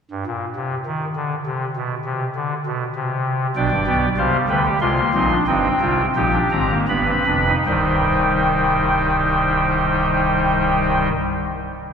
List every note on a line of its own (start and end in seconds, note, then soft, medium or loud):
0.11 0.24 G2 medium
0.26 0.45 A#2 medium
0.56 0.75 C3 medium
0.86 1.05 D#3 medium
1.16 1.35 D3 medium
1.47 1.65 C3 medium
1.76 1.95 B2 medium
2.06 2.24 C3 medium
2.36 2.54 D3 medium
2.66 2.84 B2 medium
2.96 3.47 C3 medium
3.56 3.69 B1 medium
3.56 3.69 B2 medium
3.56 3.75 D4 medium
3.56 4.08 D5 medium
3.56 4.09 G5 medium
3.71 3.84 G1 medium
3.71 3.84 G2 medium
3.87 4.06 B1 medium
3.87 4.06 B2 medium
3.87 4.06 B3 medium
4.17 4.37 C2 medium
4.17 4.37 C3 loud
4.17 4.72 G3 medium
4.17 4.37 C5 medium
4.17 4.37 F5 medium
4.49 4.69 D2 medium
4.49 4.68 D3 medium
4.49 4.62 B4 medium
4.49 4.68 G5 medium
4.65 4.79 G4 medium
4.81 5.01 C2 loud
4.81 5.01 C3 loud
4.81 4.95 G#3 medium
4.81 5.01 F4 medium
4.81 5.37 C6 medium
4.98 5.11 A#3 medium
5.14 5.34 A#1 medium
5.14 5.34 A#2 medium
5.14 5.27 C4 medium
5.14 5.34 D#4 medium
5.31 5.44 D4 medium
5.47 5.68 G1 medium
5.47 5.68 G2 medium
5.47 6.06 C4 medium
5.47 5.68 D#4 medium
5.47 6.06 G5 medium
5.81 6.02 C2 medium
5.81 6.02 C3 medium
5.81 6.02 F4 medium
6.16 6.38 A#1 medium
6.16 6.37 A#2 medium
6.16 6.31 D#4 medium
6.16 6.78 G4 medium
6.16 6.38 G5 medium
6.33 6.49 D4 medium
6.51 6.74 G#1 medium
6.51 6.74 G#2 medium
6.51 6.67 C4 medium
6.51 6.74 A#5 medium
6.70 6.85 A#3 medium
6.88 7.12 G1 medium
6.88 7.12 G2 medium
6.88 7.04 B3 medium
6.88 7.55 B4 medium
6.88 7.55 B5 medium
7.07 7.24 C4 medium
7.26 7.51 F1 medium
7.26 7.51 F2 medium
7.26 7.43 D4 medium
7.47 7.63 D#4 medium
7.66 11.08 C1 medium
7.66 11.08 C2 medium
7.66 11.12 D#3 medium
7.66 11.11 G3 medium
7.66 11.08 D#4 medium
7.66 11.08 C5 medium
7.66 11.09 G5 medium